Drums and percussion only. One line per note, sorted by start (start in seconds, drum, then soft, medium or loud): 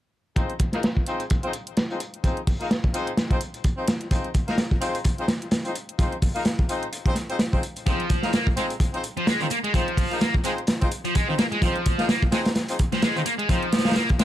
0.36 kick medium
0.36 closed hi-hat medium
0.36 closed hi-hat soft
0.50 closed hi-hat soft
0.59 kick medium
0.59 closed hi-hat medium
0.73 snare soft
0.73 closed hi-hat soft
0.83 snare loud
0.83 closed hi-hat soft
0.83 closed hi-hat medium
0.97 kick medium
1.06 closed hi-hat medium
1.20 closed hi-hat soft
1.30 kick loud
1.30 closed hi-hat soft
1.30 closed hi-hat medium
1.43 closed hi-hat soft
1.53 closed hi-hat medium
1.67 closed hi-hat soft
1.77 snare loud
1.77 closed hi-hat soft
1.77 closed hi-hat medium
1.90 closed hi-hat soft
2.00 closed hi-hat medium
2.14 closed hi-hat soft
2.24 kick medium
2.24 closed hi-hat soft
2.24 closed hi-hat medium
2.37 closed hi-hat soft
2.47 kick medium
2.47 closed hi-hat medium
2.47 open hi-hat medium
2.61 closed hi-hat soft
2.71 snare loud
2.71 closed hi-hat soft
2.71 closed hi-hat medium
2.84 kick medium
2.94 closed hi-hat medium
3.07 closed hi-hat soft
3.17 snare medium
3.17 closed hi-hat soft
3.17 closed hi-hat medium
3.31 kick medium
3.31 closed hi-hat soft
3.41 closed hi-hat medium
3.54 closed hi-hat soft
3.64 kick medium
3.64 closed hi-hat soft
3.64 closed hi-hat medium
3.88 snare loud
3.88 closed hi-hat medium
4.01 closed hi-hat soft
4.11 kick medium
4.11 closed hi-hat soft
4.11 closed hi-hat medium
4.24 closed hi-hat soft
4.34 kick medium
4.34 closed hi-hat medium
4.48 snare soft
4.48 closed hi-hat soft
4.58 snare loud
4.58 closed hi-hat soft
4.58 closed hi-hat medium
4.71 kick medium
4.82 closed hi-hat medium
4.95 closed hi-hat soft
5.04 kick medium
5.04 closed hi-hat medium
5.04 closed hi-hat soft
5.18 closed hi-hat soft
5.28 snare medium
5.28 closed hi-hat medium
5.42 closed hi-hat soft
5.51 snare loud
5.51 closed hi-hat medium
5.51 closed hi-hat soft
5.65 closed hi-hat soft
5.75 closed hi-hat medium
5.89 closed hi-hat soft
5.99 kick loud
5.99 closed hi-hat medium
5.99 closed hi-hat soft
6.12 closed hi-hat soft
6.22 kick medium
6.22 closed hi-hat medium
6.22 open hi-hat medium
6.36 closed hi-hat soft
6.45 snare loud
6.45 closed hi-hat medium
6.45 closed hi-hat soft
6.59 kick loud
6.69 closed hi-hat medium
6.83 closed hi-hat soft
6.93 closed hi-hat medium
6.93 closed hi-hat soft
7.06 kick medium
7.06 closed hi-hat soft
7.15 snare soft
7.15 closed hi-hat medium
7.30 closed hi-hat soft
7.39 snare medium
7.39 closed hi-hat medium
7.39 closed hi-hat soft
7.53 kick medium
7.63 closed hi-hat medium
7.76 closed hi-hat soft
7.86 kick loud
7.86 closed hi-hat soft
7.86 closed hi-hat medium
8.00 closed hi-hat soft
8.10 kick medium
8.10 closed hi-hat medium
8.23 snare soft
8.23 closed hi-hat soft
8.33 snare loud
8.33 closed hi-hat medium
8.33 closed hi-hat soft
8.47 kick loud
8.57 closed hi-hat medium
8.70 closed hi-hat soft
8.80 kick loud
8.80 closed hi-hat soft
8.80 closed hi-hat medium
8.94 closed hi-hat soft
9.04 closed hi-hat medium
9.17 closed hi-hat soft
9.27 snare loud
9.27 closed hi-hat soft
9.27 closed hi-hat medium
9.40 closed hi-hat soft
9.50 closed hi-hat medium
9.64 closed hi-hat soft
9.74 kick loud
9.74 closed hi-hat medium
9.74 closed hi-hat soft
9.88 closed hi-hat soft
9.97 kick medium
9.97 closed hi-hat medium
9.97 open hi-hat medium
10.11 closed hi-hat soft
10.21 snare loud
10.21 closed hi-hat medium
10.21 closed hi-hat soft
10.34 kick medium
10.44 closed hi-hat medium
10.58 closed hi-hat soft
10.67 snare loud
10.67 closed hi-hat medium
10.67 closed hi-hat soft
10.81 kick medium
10.81 closed hi-hat soft
10.91 closed hi-hat medium
11.05 closed hi-hat soft
11.15 kick medium
11.15 closed hi-hat medium
11.15 closed hi-hat soft
11.38 snare loud
11.38 closed hi-hat medium
11.52 closed hi-hat soft
11.62 kick loud
11.62 closed hi-hat medium
11.62 closed hi-hat soft
11.76 closed hi-hat soft
11.86 kick medium
11.86 closed hi-hat medium
11.98 snare soft
11.98 closed hi-hat soft
12.09 snare loud
12.09 closed hi-hat soft
12.09 closed hi-hat medium
12.22 kick loud
12.32 snare medium
12.32 closed hi-hat medium
12.45 snare loud
12.45 closed hi-hat medium
12.45 closed hi-hat soft
12.55 snare medium
12.55 closed hi-hat medium
12.55 closed hi-hat soft
12.68 closed hi-hat medium
12.68 closed hi-hat soft
12.79 kick medium
12.79 closed hi-hat medium
12.92 snare soft
12.92 closed hi-hat soft
13.02 snare loud
13.02 closed hi-hat soft
13.02 closed hi-hat medium
13.16 closed hi-hat soft
13.26 closed hi-hat medium
13.39 closed hi-hat soft
13.49 kick loud
13.49 closed hi-hat soft
13.49 closed hi-hat medium
13.63 closed hi-hat soft
13.73 snare medium
13.73 closed hi-hat medium
13.79 snare medium
13.79 closed hi-hat medium
13.85 snare medium
13.85 closed hi-hat medium
13.85 closed hi-hat soft
13.91 snare medium
13.91 closed hi-hat medium
13.95 snare loud
13.95 closed hi-hat medium
13.95 closed hi-hat soft
14.09 kick medium
14.09 closed hi-hat soft
14.19 snare loud
14.19 closed hi-hat medium